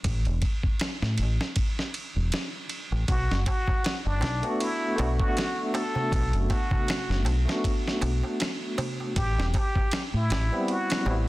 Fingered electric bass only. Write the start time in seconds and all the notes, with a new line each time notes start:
0.05 A1
0.26 E1
1.02 A2
1.19 A1
2.16 E1
2.92 A1
3.08 B1
3.31 F#1
4.06 F#1
4.22 B1
4.99 B1
6.12 B1
6.33 F#1
7.09 F#1
7.26 B1
8.02 B1
9.16 A1
9.38 E1
10.14 A2
10.30 A1
11.06 A1